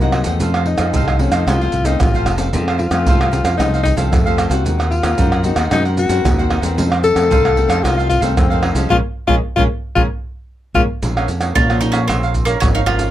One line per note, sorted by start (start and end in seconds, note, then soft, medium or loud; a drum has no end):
0.00 0.22 C2 loud
0.00 0.38 C3 medium
0.00 0.24 F#3 medium
0.00 0.28 A#3 medium
0.00 0.24 C4 medium
0.00 0.24 D#4 medium
0.00 0.13 C5 medium
0.00 0.13 D#5 medium
0.00 0.14 F#5 medium
0.00 pandeiro soft
0.00 maracas soft
0.12 0.26 F#4 medium
0.12 0.26 C5 medium
0.12 0.25 D#5 medium
0.12 0.24 F#5 medium
0.12 pandeiro medium
0.12 tamborim medium
0.24 0.41 E2 medium
0.24 0.76 F3 medium
0.24 0.76 A3 medium
0.24 0.76 C4 medium
0.24 0.40 C5 soft
0.24 0.39 D#5 medium
0.24 0.39 F#5 medium
0.24 pandeiro medium
0.24 maracas medium
0.40 0.91 F2 medium
0.40 0.75 F2 loud
0.40 0.53 F4 medium
0.40 0.54 A4 soft
0.40 0.54 C5 medium
0.40 0.54 F5 medium
0.40 pandeiro medium
0.40 maracas medium
0.40 surdo medium
0.54 0.66 A4 medium
0.54 0.66 C5 medium
0.54 0.67 F5 medium
0.54 pandeiro soft
0.54 tamborim medium
0.54 maracas soft
0.66 1.22 D#4 medium
0.66 muted cavaquinho stroke soft
0.66 pandeiro medium
0.78 0.91 F2 medium
0.78 1.15 F3 medium
0.78 1.16 A3 medium
0.78 1.16 C4 medium
0.78 0.93 A4 soft
0.78 0.93 C5 soft
0.78 0.92 F5 soft
0.78 pandeiro medium
0.78 tamborim medium
0.78 maracas medium
0.94 1.28 C2 medium
0.94 1.45 C3 medium
0.94 1.06 F4 medium
0.94 1.07 A4 medium
0.94 1.07 C5 medium
0.94 1.07 F5 medium
0.94 pandeiro medium
0.94 maracas medium
0.94 surdo loud
1.08 1.32 A4 medium
1.08 1.32 C5 medium
1.08 1.31 F5 medium
1.08 pandeiro soft
1.08 tamborim medium
1.08 maracas soft
1.19 1.42 F3 medium
1.19 1.42 A3 medium
1.19 1.43 C4 medium
1.19 1.34 C#4 medium
1.19 pandeiro medium
1.32 1.44 F2 medium
1.32 1.50 D#4 medium
1.32 1.46 A4 medium
1.32 1.46 C5 medium
1.32 1.45 F5 medium
1.32 pandeiro medium
1.32 tamborim medium
1.32 maracas medium
1.47 1.69 C2 medium
1.47 1.98 F2 medium
1.47 1.83 F3 soft
1.47 1.83 A3 medium
1.47 1.83 C4 medium
1.47 1.59 F4 soft
1.47 1.87 F4 loud
1.47 1.60 A4 soft
1.47 1.60 C5 soft
1.47 1.60 F5 medium
1.47 pandeiro medium
1.47 tamborim medium
1.47 maracas medium
1.47 surdo medium
1.61 1.72 A4 medium
1.61 1.73 C5 medium
1.61 1.73 F5 medium
1.61 pandeiro soft
1.61 maracas soft
1.72 1.97 C2 medium
1.72 muted cavaquinho stroke soft
1.72 pandeiro medium
1.72 maracas medium
1.72 surdo medium
1.84 2.08 F3 medium
1.84 2.08 A3 medium
1.84 2.09 C4 medium
1.84 2.02 D#4 medium
1.84 2.13 A4 medium
1.84 2.12 C5 medium
1.84 2.12 F5 medium
1.84 pandeiro medium
1.84 maracas medium
2.00 2.24 A1 medium
2.00 2.51 C3 medium
2.00 2.40 F4 medium
2.00 pandeiro medium
2.00 tamborim medium
2.00 maracas medium
2.00 surdo loud
2.14 2.36 F3 medium
2.14 2.36 A3 medium
2.14 2.37 C4 medium
2.14 2.25 A4 medium
2.14 2.26 C5 medium
2.14 2.26 F5 medium
2.14 pandeiro soft
2.14 maracas soft
2.26 2.54 F1 medium
2.26 2.39 F4 soft
2.26 2.39 A4 medium
2.26 2.38 C5 medium
2.26 2.37 F5 medium
2.26 pandeiro medium
2.26 tamborim medium
2.26 maracas medium
2.38 2.48 F3 medium
2.38 2.48 A3 medium
2.38 2.48 C4 medium
2.38 2.52 A4 soft
2.38 2.52 C5 medium
2.38 2.52 F5 medium
2.38 pandeiro medium
2.38 maracas medium
2.53 2.87 F2 loud
2.53 3.04 F2 medium
2.53 2.78 F3 medium
2.53 2.78 A3 medium
2.53 2.79 C4 medium
2.53 2.66 F4 soft
2.53 2.66 A4 medium
2.53 2.66 C5 soft
2.53 2.67 F5 medium
2.53 pandeiro medium
2.53 maracas medium
2.53 surdo medium
2.68 2.78 A4 medium
2.68 2.79 C5 medium
2.68 2.80 F5 medium
2.68 pandeiro soft
2.68 tamborim medium
2.68 maracas soft
2.78 3.55 F4 loud
2.78 muted cavaquinho stroke soft
2.78 pandeiro medium
2.91 3.03 F2 medium
2.91 3.28 F3 medium
2.91 3.28 A3 medium
2.91 3.28 C4 medium
2.91 3.06 A4 soft
2.91 3.05 C5 soft
2.91 3.05 F5 soft
2.91 pandeiro medium
2.91 tamborim medium
2.91 maracas medium
3.06 3.40 C2 medium
3.06 3.57 C3 medium
3.06 3.19 F4 medium
3.06 3.20 A4 medium
3.06 3.20 C5 medium
3.06 3.20 F5 medium
3.06 pandeiro medium
3.06 maracas medium
3.06 surdo medium
3.21 3.45 A4 medium
3.21 3.44 C5 medium
3.21 3.44 F5 medium
3.21 pandeiro soft
3.21 tamborim medium
3.21 maracas soft
3.31 3.48 F3 medium
3.31 3.48 A3 medium
3.31 3.48 C4 medium
3.31 pandeiro medium
3.31 maracas medium
3.44 3.56 F2 medium
3.44 3.59 A4 medium
3.44 3.58 C5 medium
3.44 3.58 F5 medium
3.44 pandeiro medium
3.44 tamborim medium
3.44 maracas medium
3.57 3.93 C2 loud
3.57 4.09 F2 soft
3.57 3.95 F3 soft
3.57 3.95 A3 medium
3.57 3.95 C4 medium
3.57 3.83 D#4 loud
3.57 3.72 F4 medium
3.57 3.72 A4 medium
3.57 3.73 C5 soft
3.57 pandeiro medium
3.57 tamborim medium
3.57 maracas medium
3.57 surdo medium
3.62 3.73 F5 soft
3.74 3.85 A4 medium
3.74 3.85 C5 medium
3.74 3.85 F5 medium
3.74 pandeiro soft
3.74 maracas soft
3.83 3.96 D#4 medium
3.83 muted cavaquinho stroke soft
3.83 pandeiro medium
3.83 maracas medium
3.83 surdo medium
3.96 4.09 C2 medium
3.96 4.20 F3 medium
3.96 4.21 A3 medium
3.96 4.21 C4 medium
3.96 4.24 A4 medium
3.96 4.24 C5 medium
3.96 4.24 F5 medium
3.96 pandeiro medium
3.96 maracas medium
4.11 4.46 F2 medium
4.11 4.63 C3 medium
4.11 4.49 A3 medium
4.11 pandeiro medium
4.11 tamborim medium
4.11 maracas medium
4.11 surdo loud
4.26 4.49 F3 medium
4.26 4.49 A3 medium
4.26 4.49 C4 medium
4.26 4.37 A4 medium
4.26 4.37 C5 medium
4.26 4.37 F5 medium
4.26 pandeiro soft
4.26 maracas soft
4.37 4.50 F4 soft
4.37 4.50 A4 medium
4.37 4.49 C5 medium
4.37 4.48 F5 medium
4.37 pandeiro medium
4.37 tamborim medium
4.37 maracas medium
4.49 4.65 C2 medium
4.49 5.00 A#3 medium
4.49 5.01 C4 medium
4.49 5.01 F#4 medium
4.49 4.64 A4 medium
4.49 4.64 C5 medium
4.49 4.63 F5 medium
4.49 pandeiro medium
4.49 maracas medium
4.64 4.99 D#2 loud
4.64 5.16 D#3 medium
4.64 4.77 D#4 soft
4.64 4.78 A#4 soft
4.64 4.78 C5 soft
4.64 4.77 F#5 medium
4.64 pandeiro medium
4.64 maracas medium
4.64 surdo medium
4.79 4.90 A#4 medium
4.79 4.90 C5 medium
4.79 4.90 F#5 medium
4.79 pandeiro soft
4.79 tamborim medium
4.79 maracas soft
4.91 5.46 F4 medium
4.91 muted cavaquinho stroke soft
4.91 pandeiro medium
5.02 5.16 D#2 medium
5.02 5.40 A#3 medium
5.02 5.40 C4 medium
5.02 5.17 A#4 soft
5.02 5.17 C5 soft
5.02 5.16 F#5 soft
5.02 pandeiro medium
5.02 tamborim medium
5.02 maracas medium
5.17 5.52 F#2 medium
5.17 5.70 D#3 medium
5.17 5.30 D#4 medium
5.17 5.31 A#4 medium
5.17 5.31 C5 medium
5.17 5.31 F#5 medium
5.17 pandeiro medium
5.17 maracas medium
5.17 surdo medium
5.32 5.57 A#4 medium
5.32 5.56 C5 medium
5.32 5.56 F#5 medium
5.32 pandeiro soft
5.32 tamborim medium
5.32 maracas soft
5.44 5.61 A#3 medium
5.44 5.61 C4 medium
5.44 5.72 D#4 medium
5.44 5.61 F#4 medium
5.44 pandeiro medium
5.44 maracas medium
5.56 5.69 D#2 medium
5.56 5.71 A#4 medium
5.56 5.70 C5 medium
5.56 5.70 F#5 medium
5.56 pandeiro medium
5.56 tamborim medium
5.56 maracas medium
5.71 6.06 F#2 loud
5.71 6.22 D#3 medium
5.71 6.08 A#3 soft
5.71 6.08 C4 medium
5.71 5.84 D#4 soft
5.71 5.84 D#4 medium
5.71 6.08 F#4 medium
5.71 5.84 A#4 medium
5.71 5.85 C5 medium
5.71 5.84 F#5 soft
5.71 pandeiro medium
5.71 tamborim medium
5.71 maracas medium
5.71 surdo medium
5.85 5.96 A#4 medium
5.85 5.97 C5 medium
5.85 5.97 F#5 medium
5.85 pandeiro soft
5.85 maracas soft
5.97 6.48 F#4 loud
5.97 muted cavaquinho stroke soft
5.97 pandeiro medium
5.97 maracas medium
6.09 6.22 F#2 medium
6.09 6.33 A#3 medium
6.09 6.33 C4 medium
6.09 6.33 F#4 medium
6.09 6.37 A#4 medium
6.09 6.36 C5 medium
6.09 6.36 F#5 medium
6.09 pandeiro medium
6.09 maracas loud
6.25 6.59 D#2 medium
6.25 6.63 D#3 medium
6.25 pandeiro loud
6.25 tamborim medium
6.25 maracas medium
6.25 surdo loud
6.38 6.61 A#3 medium
6.38 6.61 C4 medium
6.38 6.62 F#4 medium
6.38 6.49 A#4 medium
6.38 6.50 C5 medium
6.38 6.50 F#5 medium
6.38 pandeiro soft
6.38 maracas soft
6.50 6.63 D#4 medium
6.50 6.62 A#4 medium
6.50 6.61 C5 medium
6.50 6.60 F#5 medium
6.50 pandeiro medium
6.50 tamborim medium
6.61 6.78 E2 medium
6.61 7.13 D#3 medium
6.61 7.14 A3 medium
6.61 7.14 C4 medium
6.61 6.76 A#4 medium
6.61 6.76 C5 medium
6.61 6.75 F#5 medium
6.61 pandeiro medium
6.61 maracas medium
6.77 7.12 F2 loud
6.77 7.29 F2 medium
6.77 6.90 D#4 soft
6.77 6.90 A4 soft
6.77 6.90 C5 soft
6.77 6.89 F5 medium
6.77 pandeiro medium
6.77 maracas medium
6.77 surdo medium
6.90 7.02 A4 soft
6.90 7.02 C5 soft
6.90 7.03 F5 medium
6.90 pandeiro soft
6.90 tamborim medium
6.90 maracas soft
7.03 7.85 A4 loud
7.03 muted cavaquinho stroke soft
7.03 pandeiro medium
7.03 maracas medium
7.14 7.28 F2 medium
7.14 7.53 D#3 medium
7.14 7.53 A3 medium
7.14 7.53 C4 medium
7.14 7.29 A4 soft
7.14 7.29 C5 soft
7.14 7.28 F5 soft
7.14 pandeiro medium
7.14 tamborim medium
7.14 maracas medium
7.30 7.65 C2 medium
7.30 7.82 C3 medium
7.30 7.43 D#4 medium
7.30 7.43 A4 medium
7.30 7.44 C5 medium
7.30 7.44 F5 medium
7.30 pandeiro medium
7.30 maracas medium
7.30 surdo loud
7.45 7.69 A4 medium
7.45 7.68 C5 medium
7.45 7.67 F5 medium
7.45 pandeiro soft
7.45 tamborim medium
7.45 maracas soft
7.56 7.79 D#3 medium
7.56 7.80 A3 medium
7.56 7.80 C4 medium
7.56 pandeiro medium
7.68 7.81 F2 medium
7.68 7.82 A4 medium
7.68 7.82 C5 medium
7.68 7.82 F5 medium
7.68 pandeiro medium
7.68 tamborim medium
7.68 maracas medium
7.83 8.18 C2 loud
7.83 8.35 F2 medium
7.83 8.20 D#3 medium
7.83 8.20 A3 soft
7.83 8.20 C4 medium
7.83 7.96 D#4 soft
7.83 8.09 F4 loud
7.83 7.96 A4 soft
7.83 7.96 C5 medium
7.83 7.96 F5 soft
7.83 pandeiro medium
7.83 tamborim loud
7.83 maracas medium
7.83 surdo medium
7.97 8.08 A4 medium
7.97 8.08 C5 medium
7.97 8.09 F5 medium
7.97 pandeiro soft
7.97 maracas soft
8.09 8.22 F4 medium
8.09 muted cavaquinho stroke soft
8.09 pandeiro medium
8.09 maracas medium
8.09 surdo medium
8.20 8.34 C2 loud
8.20 8.46 D#3 medium
8.20 8.46 A3 medium
8.20 8.46 C4 medium
8.20 8.49 A4 medium
8.20 8.48 C5 medium
8.20 8.48 F5 medium
8.20 pandeiro medium
8.20 maracas medium
8.37 8.71 F2 medium
8.37 8.88 C3 medium
8.37 8.75 C4 medium
8.37 pandeiro medium
8.37 tamborim medium
8.37 maracas medium
8.37 surdo loud
8.50 8.74 D#3 medium
8.50 8.74 A3 medium
8.50 8.74 C4 medium
8.50 8.62 A4 medium
8.50 8.62 C5 medium
8.50 8.62 F5 medium
8.50 pandeiro soft
8.50 maracas soft
8.62 8.75 D#4 medium
8.62 8.74 A4 medium
8.62 8.74 C5 medium
8.62 8.73 F5 medium
8.62 pandeiro medium
8.62 tamborim medium
8.74 8.89 C2 medium
8.74 8.90 F3 medium
8.74 8.89 G#3 medium
8.74 8.90 C#4 medium
8.74 8.89 A4 medium
8.74 8.89 C5 medium
8.74 8.88 F5 medium
8.74 pandeiro medium
8.74 maracas medium
8.89 9.00 A#1 loud
8.89 8.99 G#3 medium
8.89 8.99 A#3 medium
8.89 8.99 C#4 medium
8.89 8.97 F4 loud
8.89 8.98 G#4 medium
8.89 8.98 A#4 medium
8.89 8.98 C#5 medium
8.89 surdo medium
9.27 9.39 A#1 loud
9.27 9.38 G#3 medium
9.27 9.38 A#3 loud
9.27 9.38 C#4 medium
9.27 9.35 F4 loud
9.27 9.37 G#4 medium
9.27 9.37 A#4 medium
9.27 9.37 C#5 loud
9.27 surdo loud
9.56 9.67 A#1 medium
9.56 9.66 G#3 medium
9.56 9.66 A#3 medium
9.56 9.66 C#4 medium
9.56 9.63 F4 loud
9.56 9.65 G#4 medium
9.56 9.65 A#4 medium
9.56 9.66 C#5 medium
9.56 surdo loud
9.95 10.06 A#1 loud
9.95 10.05 G#3 medium
9.95 10.05 A#3 medium
9.95 10.05 C#4 medium
9.95 10.02 F4 loud
9.95 10.05 G#4 medium
9.95 10.05 A#4 medium
9.95 10.05 C#5 medium
9.95 surdo loud
10.74 10.85 A#1 medium
10.74 10.84 G#3 medium
10.74 10.84 A#3 medium
10.74 10.84 C#4 medium
10.74 10.82 F4 medium
10.74 10.84 G#4 medium
10.74 10.84 A#4 medium
10.74 10.84 C#5 loud
10.74 surdo loud
11.03 11.25 A#1 loud
11.03 11.53 A#2 medium
11.03 11.15 F4 soft
11.03 11.15 A#4 soft
11.03 11.16 C#5 medium
11.03 11.15 F5 soft
11.03 pandeiro medium
11.03 maracas medium
11.03 surdo medium
11.17 11.53 F3 medium
11.17 11.53 A#3 medium
11.17 11.53 C#4 medium
11.17 11.28 A#4 medium
11.17 11.28 C#5 medium
11.17 11.28 F5 medium
11.17 pandeiro soft
11.17 tamborim medium
11.17 maracas soft
11.28 11.51 F2 medium
11.28 pandeiro medium
11.28 maracas medium
11.40 11.55 A#4 soft
11.40 11.54 C#5 soft
11.40 11.54 F5 soft
11.40 pandeiro medium
11.40 tamborim medium
11.40 maracas medium
11.55 12.07 F2 soft
11.55 12.11 A#2 medium
11.55 11.65 F3 medium
11.55 11.66 A#3 medium
11.55 11.66 C#4 medium
11.55 11.80 F4 loud
11.55 11.68 F4 medium
11.55 11.68 A#4 medium
11.55 11.69 C#5 medium
11.55 11.68 F5 medium
11.55 pandeiro medium
11.55 maracas medium
11.55 surdo loud
11.69 12.06 F3 medium
11.69 12.06 A#3 medium
11.69 12.06 C#4 medium
11.69 11.94 A#4 soft
11.69 11.93 C#5 medium
11.69 11.92 F5 medium
11.69 pandeiro soft
11.69 tamborim medium
11.69 maracas soft
11.81 11.95 D#4 loud
11.81 pandeiro medium
11.81 maracas medium
11.92 12.07 C#4 medium
11.92 12.08 A#4 medium
11.92 12.08 C#5 medium
11.92 12.07 F5 medium
11.92 pandeiro medium
11.92 tamborim medium
11.92 maracas medium
12.08 12.54 A#1 medium
12.08 12.60 A#2 medium
12.08 12.44 F3 soft
12.08 12.44 A#3 medium
12.08 12.45 C4 medium
12.08 12.21 F4 soft
12.08 12.22 A#4 soft
12.08 12.22 C#5 medium
12.08 12.22 F5 soft
12.08 pandeiro medium
12.08 tamborim medium
12.08 maracas medium
12.08 surdo medium
12.23 12.34 A#4 medium
12.23 12.34 C#5 medium
12.23 12.34 F5 medium
12.23 pandeiro soft
12.23 maracas soft
12.34 muted cavaquinho stroke soft
12.34 pandeiro medium
12.34 maracas medium
12.34 surdo medium
12.45 12.60 A#3 medium
12.45 12.74 A#4 medium
12.45 12.74 C#5 medium
12.45 12.73 F5 medium
12.45 pandeiro medium
12.45 maracas medium
12.60 13.08 G#1 medium
12.60 13.11 F2 medium
12.60 12.78 F3 medium
12.60 12.79 A#3 medium
12.60 12.65 C#4 medium
12.60 12.79 C#4 medium
12.60 pandeiro medium
12.60 tamborim medium
12.60 maracas loud
12.60 surdo loud
12.75 12.80 D#4 medium
12.75 12.87 A#4 medium
12.75 12.87 C#5 medium
12.75 12.88 F5 medium
12.75 pandeiro soft
12.75 maracas soft
12.86 13.11 F3 soft
12.86 13.11 A#3 medium
12.86 13.11 C#4 medium
12.86 13.11 F4 medium
12.86 13.00 F4 medium
12.86 13.00 A#4 medium
12.86 pandeiro medium
12.86 tamborim medium
12.99 13.11 A#4 soft
12.99 13.11 C#5 medium
12.99 13.11 F5 medium
12.99 pandeiro medium
12.99 maracas medium